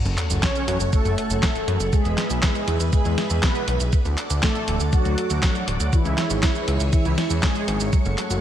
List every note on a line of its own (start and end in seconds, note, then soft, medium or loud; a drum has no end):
0.00 1.91 A4 medium
0.00 1.91 C#5 medium
0.00 1.91 F#5 medium
0.00 1.91 C#6 medium
0.00 sub drop medium
0.05 0.16 F#1 medium
0.05 closed hi-hat soft
0.05 cabasa soft
0.18 clap medium
0.18 closed hi-hat loud
0.30 0.41 F#1 medium
0.30 closed hi-hat soft
0.30 cabasa medium
0.43 0.90 C#4 medium
0.43 0.90 C#5 loud
0.43 kick loud
0.43 snare loud
0.43 clap medium
0.43 closed hi-hat medium
0.43 cabasa soft
0.56 closed hi-hat soft
0.56 cabasa soft
0.68 0.78 F#2 medium
0.68 closed hi-hat loud
0.80 0.91 F#1 medium
0.80 closed hi-hat soft
0.80 cabasa medium
0.93 1.89 A3 medium
0.93 1.96 A4 loud
0.93 kick loud
0.93 closed hi-hat medium
0.93 cabasa soft
1.05 1.16 F#1 medium
1.05 closed hi-hat soft
1.05 cabasa soft
1.18 closed hi-hat medium
1.30 1.41 F#1 medium
1.30 closed hi-hat soft
1.30 cabasa medium
1.43 kick loud
1.43 snare loud
1.43 clap medium
1.43 closed hi-hat medium
1.43 cabasa soft
1.55 closed hi-hat soft
1.55 cabasa soft
1.68 1.79 F#2 loud
1.68 closed hi-hat loud
1.80 1.91 F#1 medium
1.80 closed hi-hat soft
1.80 cabasa medium
1.93 2.40 G#3 medium
1.93 2.39 G#4 loud
1.93 3.91 G#4 medium
1.93 3.91 B4 medium
1.93 3.91 E5 medium
1.93 3.91 B5 loud
1.93 kick loud
1.93 closed hi-hat medium
1.93 cabasa soft
2.05 2.16 E1 medium
2.05 closed hi-hat soft
2.05 cabasa soft
2.18 snare medium
2.18 clap medium
2.18 closed hi-hat loud
2.30 2.41 B1 medium
2.30 closed hi-hat soft
2.30 cabasa medium
2.43 2.90 G#3 medium
2.43 2.92 G#4 medium
2.43 kick loud
2.43 snare loud
2.43 clap medium
2.43 closed hi-hat medium
2.43 cabasa soft
2.55 closed hi-hat soft
2.55 cabasa soft
2.68 2.79 E2 medium
2.68 closed hi-hat loud
2.80 2.91 E2 medium
2.80 closed hi-hat soft
2.80 cabasa medium
2.93 3.40 G#3 medium
2.93 3.44 G#4 medium
2.93 kick loud
2.93 closed hi-hat medium
2.93 cabasa soft
3.05 3.16 E2 medium
3.05 closed hi-hat soft
3.05 cabasa soft
3.18 snare medium
3.18 closed hi-hat medium
3.30 3.41 E2 medium
3.30 closed hi-hat soft
3.30 cabasa medium
3.43 3.78 B3 medium
3.43 3.78 B4 medium
3.43 kick loud
3.43 snare loud
3.43 clap medium
3.43 closed hi-hat medium
3.43 cabasa soft
3.55 closed hi-hat soft
3.55 cabasa soft
3.68 3.79 B1 medium
3.68 closed hi-hat loud
3.80 3.91 B1 medium
3.80 closed hi-hat soft
3.80 cabasa medium
3.93 5.91 A4 medium
3.93 5.91 D5 medium
3.93 5.91 F#5 medium
3.93 5.91 D6 medium
3.93 kick loud
3.93 closed hi-hat medium
3.93 cabasa soft
4.05 4.16 D2 medium
4.05 closed hi-hat soft
4.05 cabasa soft
4.18 clap medium
4.18 closed hi-hat medium
4.30 4.41 D2 medium
4.30 closed hi-hat soft
4.30 cabasa medium
4.43 4.90 A3 medium
4.43 4.94 A4 loud
4.43 kick loud
4.43 snare loud
4.43 clap medium
4.43 closed hi-hat medium
4.43 cabasa soft
4.55 closed hi-hat soft
4.55 cabasa soft
4.68 4.79 D1 medium
4.68 closed hi-hat medium
4.80 4.91 D2 medium
4.80 closed hi-hat soft
4.80 cabasa medium
4.93 5.89 F#3 medium
4.93 5.96 F#4 loud
4.93 kick loud
4.93 closed hi-hat medium
4.93 cabasa soft
5.05 5.16 D2 medium
5.05 closed hi-hat soft
5.05 cabasa soft
5.18 closed hi-hat medium
5.30 5.41 D2 medium
5.30 closed hi-hat soft
5.30 cabasa medium
5.43 kick loud
5.43 snare loud
5.43 clap medium
5.43 closed hi-hat medium
5.43 cabasa soft
5.55 closed hi-hat soft
5.55 cabasa soft
5.68 5.78 D1 loud
5.68 closed hi-hat medium
5.80 5.91 D2 medium
5.80 closed hi-hat soft
5.80 cabasa medium
5.93 6.40 E3 medium
5.93 6.42 E4 loud
5.93 7.91 G#4 medium
5.93 7.91 C#5 medium
5.93 7.91 E5 medium
5.93 8.41 C#6 medium
5.93 kick loud
5.93 closed hi-hat medium
5.93 cabasa soft
6.05 6.16 C#2 medium
6.05 closed hi-hat soft
6.05 cabasa soft
6.18 snare medium
6.18 clap medium
6.18 closed hi-hat loud
6.30 6.41 G#1 medium
6.30 closed hi-hat soft
6.30 cabasa medium
6.43 6.90 E3 medium
6.43 6.92 E4 medium
6.43 kick loud
6.43 snare loud
6.43 clap medium
6.43 closed hi-hat medium
6.43 cabasa soft
6.55 closed hi-hat soft
6.55 cabasa soft
6.68 6.79 C#2 medium
6.68 closed hi-hat medium
6.80 6.91 C#2 medium
6.80 closed hi-hat soft
6.80 cabasa medium
6.93 7.40 E3 medium
6.93 7.40 E4 medium
6.93 kick loud
6.93 closed hi-hat medium
6.93 cabasa soft
7.05 7.16 C#2 medium
7.05 closed hi-hat soft
7.05 cabasa soft
7.18 snare medium
7.18 closed hi-hat medium
7.30 7.41 E2 medium
7.30 closed hi-hat soft
7.30 cabasa medium
7.43 7.78 G#3 medium
7.43 7.78 G#4 medium
7.43 kick loud
7.43 snare loud
7.43 clap medium
7.43 closed hi-hat medium
7.43 cabasa soft
7.55 closed hi-hat soft
7.55 cabasa soft
7.68 7.79 G#1 loud
7.68 closed hi-hat medium
7.80 7.91 G#1 medium
7.80 closed hi-hat soft
7.80 cabasa medium
7.93 8.01 F#3 medium
7.93 8.41 A4 medium
7.93 8.41 C#5 medium
7.93 8.41 F#5 medium
7.93 kick loud
7.93 closed hi-hat medium
7.93 cabasa soft
8.05 8.16 F#1 medium
8.05 8.10 C#4 medium
8.05 closed hi-hat soft
8.05 cabasa soft
8.18 8.23 F#3 medium
8.18 clap medium
8.18 closed hi-hat medium
8.30 8.41 F#1 medium
8.30 8.39 F#4 medium
8.30 closed hi-hat soft
8.30 cabasa medium